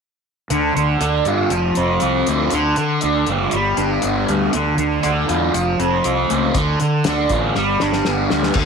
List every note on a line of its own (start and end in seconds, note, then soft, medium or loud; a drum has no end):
0.50 0.70 D2 medium
0.50 0.74 D3 medium
0.50 closed hi-hat medium
0.75 0.96 D2 medium
0.75 1.51 D3 medium
0.75 closed hi-hat medium
1.01 1.21 D2 medium
1.01 1.51 D4 medium
1.01 closed hi-hat medium
1.25 1.46 G2 medium
1.25 1.52 F4 medium
1.25 closed hi-hat medium
1.50 1.71 F1 medium
1.50 2.52 F3 medium
1.50 closed hi-hat medium
1.75 1.97 F1 medium
1.75 2.53 C4 medium
1.75 closed hi-hat medium
2.00 2.22 C2 medium
2.00 2.52 F4 medium
2.00 closed hi-hat medium
2.27 2.48 D2 medium
2.27 2.52 A3 medium
2.27 closed hi-hat medium
2.50 2.72 D2 medium
2.50 2.77 D3 medium
2.50 closed hi-hat medium
2.76 2.97 D3 medium
2.76 3.53 D3 medium
2.76 closed hi-hat medium
3.01 3.23 D2 medium
3.01 3.53 D4 medium
3.01 closed hi-hat medium
3.27 3.47 F#1 medium
3.27 3.54 F4 medium
3.27 closed hi-hat medium
3.51 3.73 G1 medium
3.51 4.28 G3 medium
3.51 closed hi-hat medium
3.77 3.98 G1 medium
3.77 4.53 D4 medium
3.77 closed hi-hat medium
4.02 4.23 G1 medium
4.02 4.53 B3 medium
4.02 closed hi-hat medium
4.28 4.48 D2 medium
4.28 4.54 G3 medium
4.28 closed hi-hat soft
4.53 4.74 D2 medium
4.53 4.78 D3 medium
4.53 closed hi-hat medium
4.78 4.98 D2 medium
4.78 5.54 D3 medium
4.78 closed hi-hat medium
5.03 5.24 D2 medium
5.03 5.54 D4 medium
5.03 closed hi-hat medium
5.29 5.49 E2 medium
5.29 5.54 F4 medium
5.29 closed hi-hat medium
5.54 5.74 F1 medium
5.54 6.55 F3 medium
5.54 closed hi-hat medium
5.79 5.99 F1 medium
5.79 6.55 C4 medium
5.79 closed hi-hat medium
6.04 6.25 C2 medium
6.04 6.55 F4 medium
6.04 closed hi-hat medium
6.30 6.50 C#2 medium
6.30 6.56 A3 medium
6.30 closed hi-hat medium
6.55 6.75 D2 medium
6.55 6.79 D3 medium
6.55 kick loud
6.55 closed hi-hat medium
6.80 7.55 D3 medium
6.80 7.01 D3 medium
6.80 closed hi-hat medium
7.04 7.26 D2 medium
7.04 7.56 D4 medium
7.04 snare medium
7.04 closed hi-hat medium
7.29 7.50 A1 medium
7.29 7.55 F4 medium
7.29 kick medium
7.29 closed hi-hat medium
7.55 7.76 G1 medium
7.55 8.30 G3 medium
7.55 snare soft
7.80 8.01 G1 medium
7.80 8.56 D4 medium
7.80 snare medium
7.93 snare medium
8.05 8.26 G1 medium
8.05 8.57 B3 medium
8.05 snare medium
8.30 8.51 D2 medium
8.30 8.56 G3 medium
8.30 snare medium
8.43 snare medium
8.54 8.65 D2 medium
8.54 8.65 D3 medium
8.54 kick loud
8.54 crash loud